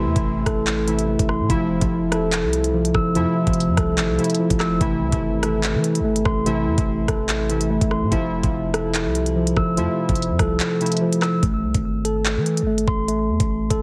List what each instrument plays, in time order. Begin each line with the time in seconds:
Already playing: synth keys C3 E3 A3 E4, french horn section C3 E3 A3 E4, tine electric piano A3 C6, downlifter
0.05 808-style bass E2
0.16 808-style bass A1, synth keys C3 E3 A3 E4, kick, closed hi-hat
0.46 808-style bass A1, tine electric piano A4, kick, cross-stick, closed hi-hat
0.67 clap, closed hi-hat
0.87 synth keys C3 E3 A3 E4, closed hi-hat
0.99 closed hi-hat
1.08 tine electric piano A3
1.19 808-style bass A1, kick, closed hi-hat
1.29 tine electric piano C6, cross-stick
1.40 808-style bass A2
1.49 808-style bass F1, synth keys C3 F3 A3 E4, tine electric piano F3, french horn section F3, kick, closed hi-hat
1.81 808-style bass F1, synth keys C3 F3 A3 E4, kick, closed hi-hat
2.11 synth keys C3 F3 A3 E4, tine electric piano A4, cross-stick, closed hi-hat
2.32 clap, closed hi-hat
2.43 808-style bass C2
2.53 closed hi-hat
2.64 closed hi-hat
2.74 tine electric piano F3
2.85 closed hi-hat
2.94 808-style bass F1, tine electric piano E6, kick, cross-stick
3.15 808-style bass F2, synth keys C3 F3 A3 E4, tine electric piano F3, closed hi-hat
3.46 808-style bass F1, synth keys C3 F3 A3 E4, kick, closed hi-hat
3.53 closed hi-hat
3.60 closed hi-hat
3.68 808-style bass F2
3.77 808-style bass C2, tine electric piano A4, kick, cross-stick, closed hi-hat
3.98 808-style bass G#1, clap, closed hi-hat
4.09 808-style bass C2
4.18 synth keys C3 F3 A3 E4, closed hi-hat
4.24 closed hi-hat
4.30 closed hi-hat
4.35 closed hi-hat
4.39 tine electric piano F3
4.50 808-style bass F1, kick, closed hi-hat
4.60 tine electric piano E6, cross-stick, clap
4.80 808-style bass A1, synth keys C3 E3 A3 E4, french horn section E3, tine electric piano A3, kick, closed hi-hat
5.01 808-style bass C2
5.12 808-style bass G#1, synth keys C3 E3 A3 E4, kick, closed hi-hat
5.42 synth keys C3 E3 A3 E4, tine electric piano A4, cross-stick, closed hi-hat
5.63 clap, closed hi-hat
5.75 808-style bass E3
5.84 closed hi-hat
5.95 closed hi-hat
6.00 808-style bass G#1
6.05 tine electric piano A3
6.16 closed hi-hat
6.25 808-style bass A1, tine electric piano C6, kick, cross-stick
6.45 synth keys C3 E3 A3 E4, tine electric piano A3, closed hi-hat
6.67 808-style bass E2
6.78 808-style bass A1, synth keys C3 E3 A3 E4, kick, closed hi-hat
7.08 808-style bass A1, tine electric piano A4, kick, cross-stick, closed hi-hat
7.29 clap, closed hi-hat
7.49 synth keys C3 E3 A3 E4, closed hi-hat
7.61 closed hi-hat
7.70 tine electric piano A3
7.81 808-style bass A1, kick, closed hi-hat
7.91 tine electric piano C6, cross-stick
8.02 808-style bass A2
8.11 808-style bass F1, synth keys C3 F3 A3 E4, french horn section C3 F3 A3 E4, tine electric piano F3, kick, closed hi-hat
8.43 808-style bass F1, synth keys C3 F3 A3 E4, kick, closed hi-hat
8.73 synth keys C3 F3 A3 E4, tine electric piano A4, cross-stick, closed hi-hat
8.95 clap, closed hi-hat
9.05 808-style bass C2
9.15 closed hi-hat
9.26 closed hi-hat
9.36 tine electric piano F3
9.47 closed hi-hat
9.57 808-style bass F1, tine electric piano E6, kick, cross-stick
9.77 808-style bass F2, synth keys C3 F3 A3 E4, tine electric piano F3, closed hi-hat
10.08 808-style bass F1, synth keys C3 F3 A3 E4, kick, closed hi-hat
10.15 closed hi-hat
10.22 closed hi-hat
10.30 808-style bass F2
10.39 808-style bass C2, tine electric piano A4, kick, cross-stick, closed hi-hat
10.60 clap, closed hi-hat
10.80 synth keys C3 F3 A3 E4, closed hi-hat
10.86 closed hi-hat
10.92 closed hi-hat
10.97 closed hi-hat
11.01 tine electric piano F3
11.13 closed hi-hat
11.22 tine electric piano E6, cross-stick, clap
11.43 808-style bass A1, tine electric piano A3, kick, closed hi-hat
11.63 808-style bass C2
11.74 808-style bass G#1, kick, closed hi-hat
12.05 tine electric piano A4, closed hi-hat
12.26 clap, closed hi-hat
12.37 808-style bass E3
12.46 closed hi-hat
12.57 closed hi-hat
12.62 808-style bass G#1
12.67 tine electric piano A3
12.78 closed hi-hat
12.88 808-style bass A1, tine electric piano C6, kick
13.08 tine electric piano A3, closed hi-hat
13.29 808-style bass E2
13.40 808-style bass A1, kick, closed hi-hat
13.70 808-style bass A1, tine electric piano A4, kick, closed hi-hat